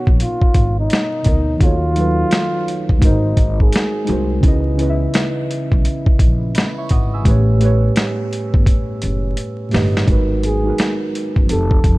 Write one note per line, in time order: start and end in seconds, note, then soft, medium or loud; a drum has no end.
0.00 1.22 B2 medium
0.00 1.24 B3 medium
0.00 1.26 D#4 medium
0.00 0.17 F#4 loud
0.00 1.28 A#4 medium
0.00 1.63 C#5 medium
0.07 0.18 A#1 medium
0.07 kick medium
0.20 0.75 F4 medium
0.20 closed hi-hat medium
0.42 kick medium
0.54 0.86 G#1 medium
0.54 kick medium
0.54 closed hi-hat medium
0.79 1.58 D#4 medium
0.90 snare loud
0.90 closed hi-hat medium
1.22 1.51 B2 medium
1.22 1.52 B3 medium
1.22 1.53 D#4 medium
1.22 kick medium
1.22 closed hi-hat medium
1.27 1.57 D2 medium
1.27 1.54 A#4 medium
1.27 1.55 D#5 medium
1.57 1.86 D#3 medium
1.57 1.87 D#4 medium
1.57 kick loud
1.57 closed hi-hat medium
1.61 2.22 D#2 loud
1.61 2.99 F4 loud
1.61 1.88 F#4 medium
1.61 1.89 A4 medium
1.61 1.90 C#5 medium
1.93 2.94 D#3 medium
1.93 2.96 F#3 medium
1.93 2.95 D#4 medium
1.93 closed hi-hat medium
1.98 2.97 A4 medium
1.98 2.98 B4 medium
2.31 snare loud
2.31 closed hi-hat medium
2.68 closed hi-hat medium
2.89 3.04 C#2 medium
2.89 kick medium
2.98 3.89 G#3 medium
2.98 3.90 D#4 medium
2.98 3.91 F#4 medium
2.98 kick loud
2.98 closed hi-hat medium
3.02 3.33 G#1 loud
3.02 3.57 D#4 medium
3.02 3.92 A#4 medium
3.02 3.92 C5 medium
3.37 3.68 G#1 medium
3.37 kick loud
3.37 closed hi-hat medium
3.60 4.40 G#4 medium
3.60 kick medium
3.72 snare loud
3.72 closed hi-hat medium
4.05 4.34 G#3 medium
4.05 4.34 D#4 medium
4.05 4.35 F#4 medium
4.05 closed hi-hat medium
4.09 4.39 C2 loud
4.09 4.36 A#4 medium
4.09 4.37 C5 medium
4.40 5.05 C#2 loud
4.40 4.69 C#3 medium
4.40 4.70 C#4 medium
4.40 4.71 E4 medium
4.40 kick loud
4.40 closed hi-hat medium
4.45 4.72 B4 medium
4.45 4.73 D#5 loud
4.75 5.76 C#3 medium
4.75 5.77 C#4 medium
4.75 5.78 E4 medium
4.75 closed hi-hat medium
4.81 5.79 B4 medium
4.81 4.89 D#5 medium
4.89 5.84 E5 loud
5.14 snare loud
5.14 closed hi-hat medium
5.51 closed hi-hat medium
5.72 5.83 B1 medium
5.72 kick medium
5.85 closed hi-hat medium
6.06 kick loud
6.19 6.50 A#1 medium
6.19 kick medium
6.19 closed hi-hat medium
6.55 6.77 D#5 medium
6.55 6.76 B5 medium
6.55 snare loud
6.55 closed hi-hat medium
6.78 6.90 E5 medium
6.78 6.90 C#6 medium
6.89 7.21 G#1 medium
6.89 7.12 F#5 medium
6.89 7.12 D#6 medium
6.89 kick medium
6.89 closed hi-hat medium
7.14 7.47 G#5 medium
7.14 7.47 E6 medium
7.22 7.87 A1 loud
7.22 7.51 A2 medium
7.22 7.52 A3 medium
7.22 7.53 G4 medium
7.22 kick loud
7.22 closed hi-hat medium
7.28 7.54 B4 medium
7.28 7.55 C#5 loud
7.58 8.59 A2 medium
7.58 8.60 A3 medium
7.58 8.61 G4 medium
7.58 closed hi-hat medium
7.63 8.62 B4 medium
7.63 8.63 C#5 loud
7.96 snare loud
7.96 closed hi-hat medium
8.33 closed hi-hat medium
8.54 8.65 G1 medium
8.54 kick loud
8.66 kick medium
8.66 closed hi-hat medium
9.02 9.33 F#1 medium
9.02 closed hi-hat medium
9.37 closed hi-hat medium
9.69 9.98 A2 medium
9.69 9.99 A3 medium
9.69 10.00 G4 medium
9.69 open hi-hat soft
9.74 10.04 G1 loud
9.74 10.01 B4 medium
9.74 10.02 D#5 medium
9.74 snare loud
9.97 snare medium
10.04 10.43 G#3 medium
10.04 10.44 D#4 medium
10.04 10.45 F#4 medium
10.04 kick loud
10.04 closed hi-hat medium
10.08 10.69 G#1 loud
10.08 10.46 A#4 medium
10.08 10.47 B4 loud
10.43 10.98 G#4 medium
10.43 closed hi-hat medium
10.62 11.22 G#3 medium
10.62 11.23 D#4 medium
10.62 11.24 F#4 medium
10.68 11.25 A#4 medium
10.68 11.26 B4 medium
10.78 snare loud
10.78 closed hi-hat medium
11.15 closed hi-hat medium
11.36 11.48 F#1 medium
11.36 kick medium
11.46 11.98 F3 medium
11.46 11.98 C4 medium
11.46 11.98 D#4 medium
11.46 closed hi-hat medium
11.51 11.81 F1 medium
11.51 11.98 G4 medium
11.51 11.98 A4 medium
11.71 kick loud
11.84 11.98 F1 loud
11.84 kick medium
11.84 closed hi-hat medium